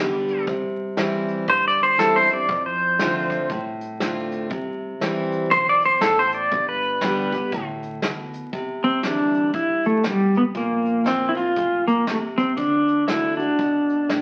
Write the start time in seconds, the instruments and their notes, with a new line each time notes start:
Already playing: upright bass B1, steel-string acoustic guitar D3 G3, pedal steel guitar D5
0.00 steel-string acoustic guitar B3 G4
0.28 closed hi-hat
0.47 upright bass C2, steel-string acoustic guitar C3, kick, closed hi-hat
0.97 steel-string acoustic guitar E3 G3 C4 E4, snare, closed hi-hat
1.28 closed hi-hat
1.48 upright bass D2, steel-string acoustic guitar G2, pedal steel guitar C5, kick, closed hi-hat
1.68 pedal steel guitar D5
1.79 closed hi-hat
1.83 pedal steel guitar C5
1.98 upright bass E2, steel-string acoustic guitar E3 G3 C4 E4, pedal steel guitar A4, snare
2.16 pedal steel guitar C5
2.29 steel-string acoustic guitar C4 E4, closed hi-hat
2.33 pedal steel guitar D5
2.49 upright bass F2, steel-string acoustic guitar F2, kick, closed hi-hat
2.66 pedal steel guitar C5
2.99 steel-string acoustic guitar D3 A3 C4 F4, snare, closed hi-hat
3.30 kick, closed hi-hat
3.50 upright bass C2, steel-string acoustic guitar A2, kick, closed hi-hat
3.81 closed hi-hat
4.00 steel-string acoustic guitar D3 A3 C4 F4, snare, closed hi-hat
4.31 closed hi-hat
4.50 upright bass C2, steel-string acoustic guitar C3, kick, closed hi-hat
5.00 upright bass C2, steel-string acoustic guitar E3 G3 C4 E4, snare, closed hi-hat
5.32 closed hi-hat
5.51 upright bass B1, steel-string acoustic guitar B2, pedal steel guitar C5, kick, closed hi-hat
5.69 pedal steel guitar D5
5.81 closed hi-hat
5.85 pedal steel guitar C5
6.01 upright bass A1, steel-string acoustic guitar A2, pedal steel guitar A4, snare
6.19 pedal steel guitar C5
6.32 pedal steel guitar D5, closed hi-hat
6.51 upright bass G1, steel-string acoustic guitar G2, kick, closed hi-hat
6.69 pedal steel guitar B4
7.01 steel-string acoustic guitar D3 G3 B3 G4, snare, closed hi-hat
7.32 steel-string acoustic guitar B3 G4, kick, closed hi-hat
7.52 upright bass D2, steel-string acoustic guitar A2, kick, closed hi-hat
7.82 closed hi-hat
8.02 steel-string acoustic guitar B2, snare, closed hi-hat
8.33 closed hi-hat
8.53 upright bass C2, steel-string acoustic guitar C3, kick, closed hi-hat
8.84 pedal steel guitar C4, closed hi-hat
9.03 upright bass D2, steel-string acoustic guitar E3 G3 D4 E4, pedal steel guitar D4, snare, closed hi-hat
9.34 closed hi-hat
9.53 upright bass C2, steel-string acoustic guitar G2, pedal steel guitar E4, kick, closed hi-hat
9.84 pedal steel guitar A3, closed hi-hat
10.03 upright bass B1, steel-string acoustic guitar B2, pedal steel guitar G3, snare, closed hi-hat
10.34 pedal steel guitar B3, closed hi-hat
10.55 upright bass A#1, steel-string acoustic guitar A#2, pedal steel guitar A#3, kick, closed hi-hat
10.86 closed hi-hat
11.04 steel-string acoustic guitar F3 A#3 C4 F4, pedal steel guitar C4, snare, closed hi-hat
11.29 pedal steel guitar E4
11.35 steel-string acoustic guitar C4 F4, pedal steel guitar F4, closed hi-hat
11.56 upright bass F1, steel-string acoustic guitar A#2, kick, closed hi-hat
11.87 pedal steel guitar A#3, closed hi-hat
12.07 steel-string acoustic guitar C3, pedal steel guitar A3, snare, closed hi-hat
12.38 pedal steel guitar C4, kick, closed hi-hat
12.57 upright bass D2, steel-string acoustic guitar D3, pedal steel guitar D4, kick, closed hi-hat
12.88 closed hi-hat
13.08 steel-string acoustic guitar D3 A3 D4 F#4, pedal steel guitar E4, snare, closed hi-hat
13.37 pedal steel guitar D4, steel-string acoustic guitar F#4, closed hi-hat
13.41 steel-string acoustic guitar D4
13.58 upright bass A1, steel-string acoustic guitar B2, kick, closed hi-hat
13.89 closed hi-hat
14.09 steel-string acoustic guitar A2, snare, closed hi-hat